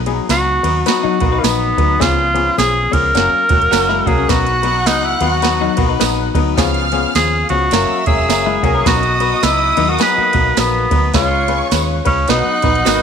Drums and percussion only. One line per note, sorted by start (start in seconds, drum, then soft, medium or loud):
0.06 ride medium
0.29 snare loud
0.29 ride medium
0.29 tambourine medium
0.64 ride medium
0.86 snare loud
0.86 ride medium
0.86 tambourine medium
1.20 kick loud
1.20 ride medium
1.44 snare loud
1.44 ride medium
1.44 tambourine loud
1.78 kick medium
1.78 ride medium
2.01 kick loud
2.01 snare loud
2.01 ride medium
2.01 tambourine medium
2.36 ride medium
2.58 snare loud
2.58 ride medium
2.58 tambourine loud
2.93 kick medium
2.93 ride medium
3.15 snare loud
3.15 ride medium
3.15 tambourine medium
3.49 kick loud
3.49 ride medium
3.62 ride soft
3.73 snare loud
3.73 ride medium
3.73 tambourine loud
3.90 snare soft
4.06 kick loud
4.06 ride medium
4.29 kick loud
4.29 snare loud
4.29 ride medium
4.29 tambourine medium
4.47 ride medium
4.63 ride medium
4.86 snare loud
4.86 ride medium
4.86 tambourine medium
5.21 ride medium
5.42 snare loud
5.42 ride medium
5.42 tambourine medium
5.77 kick loud
5.77 ride medium
6.01 snare loud
6.01 ride medium
6.01 tambourine loud
6.35 kick medium
6.35 ride medium
6.58 kick loud
6.58 snare loud
6.58 ride medium
6.58 tambourine medium
6.74 ride soft
6.92 ride medium
7.15 snare loud
7.15 ride medium
7.15 tambourine medium
7.49 ride medium
7.71 snare loud
7.71 ride medium
7.71 tambourine medium
8.06 kick loud
8.06 ride medium
8.30 snare loud
8.30 ride medium
8.30 tambourine loud
8.63 kick medium
8.63 ride medium
8.86 kick loud
8.86 snare loud
8.86 ride medium
8.86 tambourine medium
9.03 ride medium
9.20 ride medium
9.43 snare loud
9.43 ride medium
9.43 tambourine medium
9.77 ride medium
9.99 snare loud
9.99 ride medium
9.99 tambourine medium
10.33 kick loud
10.33 ride medium
10.57 snare loud
10.57 ride medium
10.57 tambourine loud
10.91 kick medium
10.91 ride medium
11.14 kick loud
11.14 snare loud
11.14 ride medium
11.14 tambourine medium
11.48 ride medium
11.71 snare loud
11.71 ride medium
11.71 tambourine loud
12.05 kick medium
12.05 ride medium
12.28 snare loud
12.28 ride medium
12.28 tambourine medium
12.62 kick loud
12.62 ride medium
12.75 ride soft
12.86 snare loud
12.86 ride medium
12.86 tambourine loud